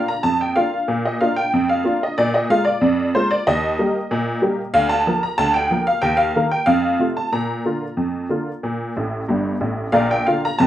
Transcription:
Already playing: A#3 D4 F4
0.08 A#5
0.23 F2 A5
0.41 G5
0.56 A#3 D4 F4 F5
0.88 A#2
1.05 D#5
1.21 A#3 D4 F4 F5
1.36 G5
1.53 F2
1.69 F5
1.84 A#3 D4 F4
2.03 D#5
2.18 A#2 D5
2.34 D#5
2.50 G#3 A#3 F4 F5
2.65 D5
2.81 F2
3.15 G#3 A#3 F4 C5
3.31 D5
3.47 D#2 D#5
3.79 G3 A#3 G4
4.11 A#2
4.42 G3 A#3 G4
4.74 D2 F5
4.89 A5
5.07 F3 A#3 A#4
5.23 A#5
5.38 D2 A5
5.54 G5
5.71 F3 A#3 A#4
5.87 F5
6.02 D#2 G5
6.17 F5
6.36 D#3 A#3 A#4
6.51 G5
6.66 F2 F5
6.99 C3 A3 F4
7.17 A5
7.33 A#2 A#5
7.65 D3 A#3 F4
7.97 F2
8.29 D3 A#3 F4
8.63 A#2
8.97 A1 A2
9.29 G1 G2
9.61 A1 A2
9.92 A#1 A#2 A#4 D5 F5
10.11 G5
10.26 D3 A#3 F4 F5
10.45 A#5
10.59 F1 F2 A5

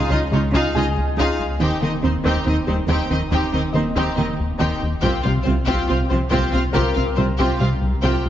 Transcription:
Already playing: C#2 G#5
0.10 C#2 C#3 C#4 D#4 F4 D#5
0.31 C#2 C#3 G#3 D#4 F4 C#5
0.52 C#2 C#3 D#4 F4 G#4 F5
0.74 C#2 C#3 G#3 D#4 F4 G#4 D#5 G#5
0.96 C#2
1.17 C#2 C#3 D#4 F4 G#4 F5
1.39 C#2
1.60 D#1 D#2 D#3 C4 D#4 G4 G5
1.81 D#3 A#3 C4 D#4 D#5
2.03 D#2 D#3 C4 D#4 C5
2.24 D#2 D#3 C4 D#4 G4 G5
2.46 D#2 D#3 C4 D#4 D#5
2.67 D#2 D#3 G3 C4 D#4 C5
2.88 D#2 D#3 C4 D#4 G4 G5
3.10 D#2 D#3 C4 D#4 D#5
3.31 D#2 D#3 C4 D#4 G4 G5
3.52 D#2 D#3 C4 D#4 D#5
3.73 D#2 D#3 A#3 C4 D#4 C5 D#5
3.95 D#2 D#3 C4 D#4 G4 G5
4.17 D#2 D#3 A#3 C4 D#4 D#5
4.39 D#2
4.59 D#2 D#3 C4 D#4 G4 G5
4.82 D#2
5.01 C2 C3 C4 F4 G4 G5, taiko
5.22 C3 G3 C4 F4 F5
5.43 C2 C3 C4 F4 C5
5.66 C2 C3 C4 F4 G4 G5, taiko
5.88 C2 C3 C4 F4 F5
6.09 C2 C3 F3 C4 F4 C5
6.30 C2 C3 C4 F4 G4 G5, taiko
6.52 C2 C3 C4 F4 F5
6.73 C2 C3 C4 F4 G4 A#4 G5, taiko
6.94 C2 C3 C4 F4 F5
7.16 C2 C3 G3 C4 F4 C5
7.38 C2 C3 C4 F4 G4 G5
7.59 C2 C3 G3 C4 F4 F5
7.82 C2
8.02 C2 C3 C4 F4 G4 G5
8.25 C2

